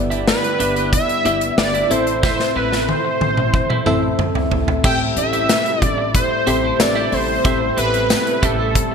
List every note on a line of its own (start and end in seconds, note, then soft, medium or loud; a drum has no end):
0.00 0.30 G1 loud
0.00 0.24 G2 medium
0.00 1.88 D3 medium
0.00 1.88 G3 medium
0.00 0.34 B3 medium
0.00 1.88 B3 medium
0.00 0.34 E4 medium
0.00 4.80 E4 medium
0.00 0.35 G4 medium
0.00 0.35 D5 loud
0.10 0.26 D4 medium
0.10 0.26 G4 medium
0.10 0.27 B4 medium
0.10 0.27 E5 medium
0.10 closed hi-hat soft
0.27 0.89 B4 loud
0.27 muted clean electric guitar stroke soft
0.27 snare loud
0.43 muted clean electric guitar stroke soft
0.43 closed hi-hat soft
0.60 0.95 G1 loud
0.60 0.76 D4 medium
0.60 0.76 G4 medium
0.60 0.75 B4 medium
0.60 0.75 E5 medium
0.60 closed hi-hat medium
0.76 0.91 D4 medium
0.76 0.92 G4 medium
0.76 0.92 B4 medium
0.76 0.92 E5 medium
0.76 closed hi-hat soft
0.92 1.54 E5 loud
0.92 muted clean electric guitar stroke soft
0.92 kick medium
0.92 closed hi-hat medium
1.09 muted clean electric guitar stroke soft
1.09 closed hi-hat soft
1.25 1.49 G1 medium
1.25 1.90 B3 medium
1.25 1.46 D4 medium
1.25 1.89 E4 medium
1.25 1.41 G4 medium
1.25 1.91 G4 medium
1.25 1.41 B4 medium
1.25 1.90 E5 medium
1.25 1.40 E5 loud
1.25 closed hi-hat medium
1.41 muted clean electric guitar stroke soft
1.41 closed hi-hat medium
1.58 1.81 G1 loud
1.58 1.92 D5 medium
1.58 muted clean electric guitar stroke soft
1.58 snare loud
1.74 1.90 D4 soft
1.74 1.90 G4 medium
1.74 1.91 B4 medium
1.74 1.91 E5 medium
1.74 closed hi-hat soft
1.90 2.37 A1 medium
1.90 2.85 A2 medium
1.90 4.82 C3 medium
1.90 4.81 E3 medium
1.90 4.82 A3 medium
1.90 2.95 C4 medium
1.90 2.95 E4 medium
1.90 2.11 E4 medium
1.90 2.06 A4 medium
1.90 2.95 A4 medium
1.90 2.23 C5 medium
1.90 2.06 C5 medium
1.90 2.95 E5 medium
1.90 2.05 E5 medium
1.90 closed hi-hat medium
2.07 muted clean electric guitar stroke medium
2.07 closed hi-hat medium
2.23 2.44 E4 medium
2.23 2.39 A4 medium
2.23 2.54 C5 loud
2.23 2.39 C5 medium
2.23 2.38 E5 medium
2.23 kick loud
2.23 snare medium
2.39 muted clean electric guitar stroke soft
2.39 snare soft
2.55 2.91 A1 medium
2.55 2.72 E4 medium
2.55 2.72 A4 medium
2.55 2.90 B4 medium
2.55 2.71 C5 medium
2.55 2.71 E5 medium
2.72 2.87 E4 medium
2.72 2.88 A4 medium
2.72 2.88 C5 medium
2.72 2.88 E5 medium
2.72 snare medium
2.89 4.19 C5 medium
2.89 muted clean electric guitar stroke soft
2.89 high tom medium
3.05 muted clean electric guitar stroke medium
3.21 3.56 A1 loud
3.21 high tom medium
3.37 muted clean electric guitar stroke soft
3.37 mid tom medium
3.54 muted clean electric guitar stroke soft
3.54 kick medium
3.70 3.85 E4 soft
3.70 3.85 A4 medium
3.70 3.86 C5 medium
3.70 3.86 E5 medium
3.70 mid tom medium
3.86 4.10 A1 loud
3.86 4.60 C4 medium
3.86 4.60 E4 medium
3.86 4.07 E4 medium
3.86 4.60 A4 medium
3.86 4.02 A4 medium
3.86 4.02 C5 medium
3.86 4.60 E5 medium
3.86 4.01 E5 medium
3.86 mid tom medium
4.03 muted clean electric guitar stroke soft
4.19 4.42 A1 loud
4.19 muted clean electric guitar stroke soft
4.19 mid tom medium
4.35 muted clean electric guitar stroke soft
4.35 floor tom medium
4.51 4.75 A1 loud
4.51 floor tom loud
4.68 muted clean electric guitar stroke soft
4.68 floor tom medium
4.84 5.08 A1 loud
4.84 5.78 A2 medium
4.84 8.95 C3 medium
4.84 8.95 G3 medium
4.84 8.95 A3 medium
4.84 5.83 C4 medium
4.84 5.05 E4 medium
4.84 8.95 E4 medium
4.84 5.83 G4 medium
4.84 5.00 G4 medium
4.84 5.83 A4 medium
4.84 5.00 C5 medium
4.84 5.83 E5 medium
4.84 4.99 E5 medium
4.84 4.99 G5 loud
4.84 kick loud
4.84 crash loud
5.00 muted clean electric guitar stroke soft
5.16 5.52 A1 loud
5.16 5.84 E5 loud
5.16 muted clean electric guitar stroke soft
5.16 closed hi-hat medium
5.33 5.48 E4 medium
5.33 5.48 G4 medium
5.33 5.49 C5 medium
5.33 5.49 E5 medium
5.33 closed hi-hat soft
5.49 snare loud
5.49 closed hi-hat medium
5.49 tambourine medium
5.65 muted clean electric guitar stroke soft
5.65 closed hi-hat soft
5.82 6.17 A1 loud
5.82 6.11 D5 loud
5.82 kick medium
5.82 closed hi-hat medium
5.98 muted clean electric guitar stroke medium
6.14 6.82 C5 loud
6.14 muted clean electric guitar stroke soft
6.14 kick loud
6.14 closed hi-hat medium
6.31 muted clean electric guitar stroke soft
6.46 6.71 A1 loud
6.46 6.72 C4 medium
6.46 6.63 E4 medium
6.46 6.72 G4 medium
6.46 6.63 G4 medium
6.46 6.72 A4 medium
6.46 6.63 C5 medium
6.46 6.72 C5 medium
6.46 6.62 E5 medium
6.46 closed hi-hat medium
6.63 6.78 E4 medium
6.63 6.79 G4 medium
6.63 6.79 C5 medium
6.63 6.79 E5 medium
6.79 7.03 A1 loud
6.79 7.29 C4 medium
6.79 7.29 G4 medium
6.79 7.29 A4 medium
6.79 7.15 D5 medium
6.79 7.29 E5 medium
6.79 muted clean electric guitar stroke soft
6.79 snare loud
6.79 closed hi-hat medium
6.79 tambourine medium
6.95 7.11 E4 medium
6.95 7.11 G4 medium
6.95 7.12 C5 medium
6.95 7.12 E5 medium
7.12 7.36 A1 loud
7.12 7.29 E4 medium
7.12 7.28 G4 medium
7.12 7.28 C5 medium
7.12 7.78 C5 loud
7.12 7.27 E5 medium
7.12 open hi-hat medium
7.28 muted clean electric guitar stroke medium
7.44 7.68 A1 loud
7.44 8.39 A2 medium
7.44 8.43 C4 medium
7.44 7.66 E4 medium
7.44 7.60 G4 medium
7.44 8.44 G4 medium
7.44 8.44 A4 medium
7.44 7.60 C5 medium
7.44 7.60 E5 medium
7.44 8.44 E5 medium
7.44 kick loud
7.44 closed hi-hat medium
7.61 muted clean electric guitar stroke soft
7.77 8.13 A1 loud
7.77 7.93 E4 medium
7.77 7.93 G4 medium
7.77 8.46 B4 loud
7.77 7.92 C5 medium
7.77 7.92 E5 medium
7.77 closed hi-hat medium
7.93 8.09 E4 medium
7.93 8.09 G4 medium
7.93 8.09 C5 medium
7.93 8.09 E5 medium
7.93 closed hi-hat medium
8.10 snare loud
8.10 closed hi-hat medium
8.10 tambourine medium
8.26 muted clean electric guitar stroke soft
8.26 closed hi-hat soft
8.42 8.78 A1 loud
8.42 8.59 E4 medium
8.42 8.58 G4 medium
8.42 8.95 A4 medium
8.42 8.58 C5 medium
8.42 8.57 E5 medium
8.42 kick medium
8.42 closed hi-hat medium
8.59 8.76 E4 medium
8.59 8.76 G4 medium
8.59 8.75 C5 medium
8.59 8.75 E5 medium
8.75 kick medium
8.75 closed hi-hat medium
8.91 muted clean electric guitar stroke soft